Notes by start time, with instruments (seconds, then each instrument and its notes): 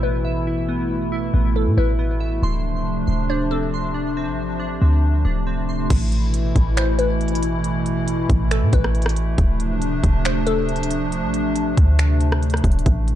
Already playing: 808-style bass A1, analog synth pad B2 E3 A3 E4, synth keys E4 E5
0.03 synth keys B3, synth pluck B4
0.25 synth keys E5
0.47 synth keys E4
0.68 synth keys B3
1.12 synth keys E4
1.33 808-style bass A1, synth keys B3
1.56 synth pluck A4
1.66 808-style bass A2
1.77 808-style bass A1, synth keys E4, synth pluck B4
1.99 synth keys B3
2.20 synth keys E5
2.42 808-style bass D1, analog synth pad C3 F3 D4, synth keys C6
3.07 808-style bass D1, synth keys C6
3.30 synth keys D4, synth pluck C5
3.51 synth keys C4, synth pluck A4
3.74 synth keys C6
3.94 synth keys D4
4.17 synth keys C4
4.27 808-style bass A1
4.60 synth keys D4
4.82 808-style bass D2, synth keys C4
5.25 808-style bass D1, synth keys D4
5.47 synth keys C4
5.69 synth keys C6
5.90 808-style bass A1, analog synth pad B2 E3 A3 E4, kick, closed hi-hat, crash
6.12 closed hi-hat
6.34 closed hi-hat
6.56 808-style bass A1, kick, closed hi-hat
6.77 synth pluck C5, finger snap, closed hi-hat
6.99 synth pluck B4, closed hi-hat
7.21 closed hi-hat
7.28 closed hi-hat
7.35 closed hi-hat
7.43 closed hi-hat
7.64 closed hi-hat
7.86 closed hi-hat
8.08 closed hi-hat
8.30 808-style bass A1, kick, closed hi-hat
8.51 synth pluck A4, finger snap, closed hi-hat
8.62 808-style bass A2
8.73 808-style bass A1, synth pluck B4, kick, closed hi-hat
8.84 cross-stick
8.95 closed hi-hat
9.02 cross-stick, closed hi-hat
9.09 closed hi-hat
9.16 closed hi-hat
9.38 808-style bass D1, analog synth pad C3 F3 D4, kick, closed hi-hat
9.60 closed hi-hat
9.82 closed hi-hat
10.03 808-style bass D1, kick, closed hi-hat
10.25 synth pluck C5, finger snap, closed hi-hat
10.47 synth pluck A4, closed hi-hat
10.69 closed hi-hat
10.76 closed hi-hat
10.83 closed hi-hat
10.90 closed hi-hat
11.12 closed hi-hat
11.23 808-style bass A1
11.34 closed hi-hat
11.55 closed hi-hat
11.77 808-style bass D2, kick, closed hi-hat
11.99 finger snap, closed hi-hat
12.21 closed hi-hat
12.32 cross-stick
12.43 closed hi-hat
12.50 cross-stick, closed hi-hat
12.57 closed hi-hat
12.64 808-style bass D1, kick, closed hi-hat
12.71 closed hi-hat
12.79 closed hi-hat
12.86 808-style bass A1, analog synth pad B2 E3 E4, kick, closed hi-hat
13.08 closed hi-hat